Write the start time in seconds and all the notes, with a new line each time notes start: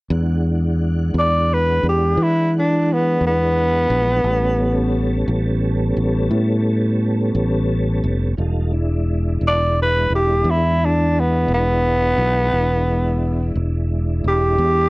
0.10 E2 E3 G#3 D4 F#5
1.14 E2
1.19 D5
1.53 B4
1.83 E2
1.89 G4
2.17 E3
2.23 E4
2.59 D4
2.93 B3
3.21 E2
3.27 B3
3.90 A#1
4.24 A1 G3 B3 C#4 A4
5.28 A1
5.97 A1
6.31 A2
7.35 A1
8.04 F1
8.37 E1 G3 D#4 F4 A4
8.72 E3 G#3 D4 E4
9.41 E1
9.48 D5
9.82 B4
10.10 E1
10.16 G4
10.44 E2
10.50 E4
10.85 D4
11.20 B3
11.48 E1
11.54 B3
12.18 B1
12.51 E1 E3 G#3 D4 E4
13.55 E1
14.24 E1 G4
14.58 E2